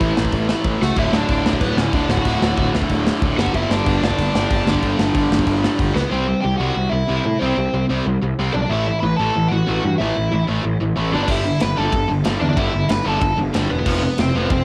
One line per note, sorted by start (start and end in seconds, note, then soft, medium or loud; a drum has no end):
0.00 0.11 A1 medium
0.00 0.80 A2 medium
0.00 0.48 A2 medium
0.00 0.81 E3 loud
0.00 0.48 E3 medium
0.00 0.98 A3 loud
0.00 0.47 A3 medium
0.00 0.13 E4 medium
0.00 0.13 E5 medium
0.00 kick loud
0.00 crash medium
0.17 0.28 A1 medium
0.17 snare loud
0.25 kick medium
0.32 0.53 A1 loud
0.32 kick loud
0.32 crash medium
0.47 0.81 A2 medium
0.47 0.80 E3 medium
0.47 0.98 A3 loud
0.47 snare loud
0.64 0.75 A1 medium
0.64 kick loud
0.64 crash medium
0.81 0.91 C#2 medium
0.81 0.97 F#4 medium
0.81 0.99 F#5 loud
0.81 snare medium
0.95 1.07 D1 loud
0.95 1.44 D2 loud
0.95 1.44 A2 loud
0.95 1.44 D3 loud
0.95 1.12 E4 medium
0.95 1.15 E5 loud
0.95 kick loud
0.95 crash medium
1.12 1.23 D1 medium
1.12 1.57 D4 medium
1.12 1.58 D5 loud
1.12 snare loud
1.28 1.39 D1 medium
1.28 kick loud
1.28 crash medium
1.44 1.55 D1 loud
1.44 1.92 D2 medium
1.44 1.93 A2 medium
1.44 1.92 D3 medium
1.44 snare loud
1.53 kick medium
1.61 1.71 D1 loud
1.61 1.76 B3 medium
1.61 1.77 B4 medium
1.61 kick loud
1.61 crash medium
1.77 1.87 D1 medium
1.77 1.92 C#4 medium
1.77 1.94 C#5 medium
1.77 snare loud
1.93 2.03 D1 loud
1.93 2.24 D2 medium
1.93 2.25 A2 medium
1.93 2.26 D3 medium
1.93 2.09 D4 medium
1.93 2.10 D5 medium
1.93 kick loud
1.93 crash medium
2.09 2.19 D1 medium
2.09 2.71 F#4 medium
2.09 2.70 F#5 loud
2.09 snare loud
2.17 kick medium
2.25 2.35 D1 loud
2.25 2.73 D2 loud
2.25 2.73 A2 loud
2.25 2.71 D3 loud
2.25 kick loud
2.25 crash medium
2.42 2.52 D1 medium
2.42 snare loud
2.57 2.68 D1 medium
2.57 kick loud
2.57 crash medium
2.73 2.84 D1 medium
2.73 3.20 D2 medium
2.73 3.21 A2 medium
2.73 3.20 D3 medium
2.73 snare loud
2.82 kick medium
2.89 3.10 D1 loud
2.89 kick loud
2.89 crash medium
3.07 snare loud
3.21 3.32 D1 medium
3.21 3.37 D2 medium
3.21 3.38 A2 medium
3.21 3.38 D3 medium
3.21 kick loud
3.21 crash medium
3.38 3.48 G1 medium
3.38 3.85 G2 medium
3.38 3.86 D3 medium
3.38 3.88 G3 medium
3.38 3.53 F#4 medium
3.38 3.54 F#5 loud
3.38 snare loud
3.46 kick medium
3.54 3.64 G1 loud
3.54 3.69 E4 medium
3.54 3.72 E5 loud
3.54 kick loud
3.54 crash medium
3.70 3.80 G1 medium
3.70 4.01 D4 medium
3.70 4.03 D5 medium
3.70 snare loud
3.86 3.96 G1 loud
3.86 4.33 G2 medium
3.86 4.34 D3 medium
3.86 4.34 G3 medium
3.86 kick loud
3.86 crash medium
4.02 4.12 G1 medium
4.02 5.76 D4 medium
4.02 5.76 D5 medium
4.02 snare loud
4.10 kick medium
4.19 4.28 G1 loud
4.19 kick loud
4.19 crash medium
4.35 4.45 G1 medium
4.35 4.64 G2 medium
4.35 4.65 D3 medium
4.35 4.68 G3 loud
4.35 snare loud
4.51 4.61 G1 loud
4.51 kick loud
4.51 crash medium
4.65 4.76 G1 medium
4.65 5.13 G2 medium
4.65 5.14 D3 medium
4.65 5.15 G3 loud
4.65 snare loud
4.75 kick medium
4.83 4.93 G1 loud
4.83 kick loud
4.83 crash medium
4.99 5.09 G1 medium
4.99 snare loud
5.14 5.25 G1 medium
5.14 5.62 G2 medium
5.14 5.63 D3 medium
5.14 5.61 G3 medium
5.14 kick loud
5.14 crash medium
5.31 5.41 G1 loud
5.31 snare loud
5.39 kick medium
5.47 5.67 G1 loud
5.47 kick loud
5.47 crash medium
5.62 5.95 G2 medium
5.62 5.95 D3 medium
5.62 5.94 G3 medium
5.62 snare loud
5.79 5.89 G1 medium
5.79 kick loud
5.79 crash medium
5.95 6.05 C#2 medium
5.95 6.01 B3 medium
5.95 6.01 B4 loud
5.95 snare medium
6.02 6.11 B3 medium
6.02 6.10 B4 medium
6.11 6.33 C2 medium
6.11 6.26 C3 medium
6.11 6.27 G3 medium
6.11 6.42 C4 medium
6.11 6.27 C4 medium
6.11 6.44 C5 loud
6.27 6.41 C3 medium
6.27 6.42 G3 medium
6.41 6.55 C2 loud
6.41 6.58 C3 medium
6.41 6.58 G3 medium
6.41 6.59 G4 medium
6.41 6.57 G5 loud
6.58 6.70 C2 medium
6.58 6.75 C3 medium
6.58 6.75 G3 medium
6.58 6.76 C4 loud
6.58 6.90 F#4 medium
6.58 6.89 F#5 medium
6.76 6.86 C2 medium
6.76 6.90 C3 medium
6.76 6.91 G3 medium
6.89 7.02 C2 medium
6.89 7.06 C3 medium
6.89 7.07 G3 medium
6.89 7.37 E4 medium
6.89 7.41 E5 loud
7.08 7.19 C2 medium
7.08 7.23 C3 medium
7.08 7.24 G3 loud
7.08 7.24 C4 medium
7.25 7.35 A2 medium
7.25 7.39 C3 medium
7.25 7.39 G3 medium
7.39 7.52 C2 loud
7.39 7.56 C3 medium
7.39 7.57 G3 medium
7.39 7.86 C4 medium
7.39 7.57 C4 loud
7.39 7.85 C5 medium
7.57 7.67 C2 medium
7.57 7.72 C3 medium
7.57 7.72 G3 medium
7.74 7.84 C2 medium
7.74 7.88 C3 medium
7.74 7.88 G3 medium
7.90 8.00 C2 medium
7.90 8.05 C3 medium
7.90 8.05 G3 loud
7.90 8.05 C4 loud
8.06 8.16 C2 loud
8.06 8.20 C3 medium
8.06 8.20 G3 medium
8.22 8.32 C2 medium
8.22 8.37 C3 medium
8.22 8.37 G3 medium
8.39 8.49 C2 loud
8.39 8.53 C3 medium
8.39 8.54 G3 loud
8.39 8.54 C4 loud
8.54 8.64 B1 medium
8.54 8.69 C3 medium
8.54 8.69 G3 medium
8.54 8.62 D4 medium
8.54 8.61 D5 medium
8.62 8.70 D4 medium
8.62 8.70 D5 medium
8.69 8.90 A1 medium
8.69 8.85 A2 medium
8.69 8.86 E3 loud
8.69 8.86 A3 loud
8.69 9.00 E4 medium
8.69 9.03 E5 medium
8.87 9.01 A2 medium
8.87 9.01 E3 loud
9.00 9.13 A1 medium
9.00 9.17 A2 medium
9.00 9.17 E3 medium
9.00 9.18 B4 medium
9.00 9.16 B5 loud
9.16 9.29 A1 medium
9.16 9.34 A2 medium
9.16 9.34 E3 loud
9.16 9.34 A3 loud
9.16 9.49 A4 medium
9.16 9.51 A5 loud
9.35 9.46 A1 loud
9.35 9.49 A2 medium
9.35 9.50 E3 loud
9.48 9.66 A2 medium
9.48 9.66 E3 medium
9.48 9.94 F#5 medium
9.52 9.62 A1 medium
9.52 9.96 F#4 medium
9.67 9.78 A1 medium
9.67 9.82 A2 medium
9.67 9.82 E3 medium
9.67 9.83 A3 loud
9.84 9.94 G2 medium
9.84 9.98 A2 medium
9.84 9.98 E3 medium
9.98 10.10 A1 loud
9.98 10.15 A2 medium
9.98 10.15 E3 loud
9.98 10.15 A3 loud
9.98 10.45 E4 medium
9.98 10.44 E5 medium
10.16 10.27 A1 medium
10.16 10.30 A2 medium
10.16 10.31 E3 medium
10.32 10.42 A1 medium
10.32 10.46 A2 medium
10.32 10.46 E3 medium
10.47 10.59 A1 medium
10.47 10.62 A2 medium
10.47 10.62 E3 medium
10.47 10.63 A3 loud
10.63 10.75 A1 medium
10.63 10.78 A2 medium
10.63 10.78 E3 medium
10.80 10.91 A1 medium
10.80 10.95 A2 medium
10.80 10.95 E3 medium
10.96 11.14 A1 loud
10.96 11.11 A2 medium
10.96 11.12 E3 medium
10.96 11.12 A3 loud
11.12 11.23 G1 medium
11.12 11.27 G2 medium
11.12 11.28 D3 medium
11.12 11.28 G3 loud
11.12 11.21 D4 medium
11.12 11.21 D5 medium
11.23 11.29 D4 medium
11.23 11.30 D5 medium
11.28 11.49 G1 medium
11.28 11.44 G2 medium
11.28 11.44 D3 medium
11.28 11.44 G3 loud
11.28 11.60 E4 medium
11.28 11.63 E5 loud
11.28 kick loud
11.28 crash loud
11.45 11.59 G2 medium
11.45 11.60 D3 medium
11.60 11.72 G1 medium
11.60 11.75 G2 medium
11.60 11.75 D3 medium
11.60 11.76 B4 medium
11.60 11.78 B5 loud
11.60 snare loud
11.60 ride medium
11.76 11.88 G1 medium
11.76 11.91 G2 medium
11.76 11.91 D3 loud
11.76 11.92 G3 loud
11.76 12.08 A4 medium
11.76 12.10 A5 medium
11.92 12.03 G1 loud
11.92 12.07 G2 medium
11.92 12.07 D3 medium
11.92 kick loud
11.92 ride medium
12.08 12.21 G1 medium
12.08 12.23 G2 medium
12.08 12.23 D3 medium
12.24 12.36 G1 medium
12.24 12.39 G2 medium
12.24 12.40 D3 medium
12.24 12.40 G3 medium
12.24 snare loud
12.24 ride medium
12.40 12.52 E2 medium
12.40 12.55 G2 medium
12.40 12.56 D3 medium
12.40 12.49 D4 medium
12.40 12.48 D5 medium
12.49 12.57 D4 medium
12.49 12.58 D5 medium
12.57 12.67 G1 loud
12.57 12.72 G2 loud
12.57 12.72 D3 medium
12.57 12.73 G3 loud
12.57 12.88 E4 medium
12.57 12.90 E5 medium
12.57 kick loud
12.57 ride medium
12.73 12.84 G1 medium
12.73 12.87 G2 medium
12.73 12.88 D3 medium
12.89 13.00 G1 medium
12.89 13.03 G2 medium
12.89 13.04 D3 medium
12.89 13.05 B4 medium
12.89 13.07 B5 loud
12.89 snare loud
12.89 ride medium
13.04 13.16 G1 medium
13.04 13.20 G2 medium
13.04 13.20 D3 loud
13.04 13.21 G3 loud
13.04 13.37 A4 medium
13.04 13.37 A5 loud
13.21 13.32 G1 loud
13.21 13.35 G2 medium
13.21 13.36 D3 medium
13.21 kick loud
13.21 ride medium
13.37 13.48 G1 medium
13.37 13.52 G2 medium
13.37 13.52 D3 medium
13.54 13.65 G1 medium
13.54 13.68 G2 medium
13.54 13.68 D3 medium
13.54 13.70 G3 loud
13.54 snare loud
13.54 ride medium
13.69 13.81 E1 medium
13.69 13.84 G2 medium
13.69 13.85 D3 medium
13.69 13.79 B3 medium
13.69 13.79 B4 loud
13.80 14.17 B3 medium
13.80 14.17 B4 loud
13.85 14.07 F1 loud
13.85 14.01 F2 loud
13.85 14.01 C3 loud
13.85 14.02 F3 loud
13.85 kick loud
13.85 crash loud
14.02 14.17 F2 medium
14.02 14.17 C3 medium
14.18 14.29 F1 medium
14.18 14.34 F2 medium
14.18 14.34 C3 medium
14.18 14.34 C4 medium
14.18 14.35 C5 loud
14.18 snare loud
14.18 ride medium
14.35 14.45 F1 loud
14.35 14.50 F2 medium
14.35 14.50 C3 loud
14.35 14.51 F3 loud
14.35 14.50 B3 medium
14.35 14.51 B4 medium
14.50 14.61 F1 loud
14.50 14.64 F2 medium
14.50 14.64 C3 medium
14.50 14.64 C4 medium
14.50 14.64 C5 loud
14.50 kick loud
14.50 ride medium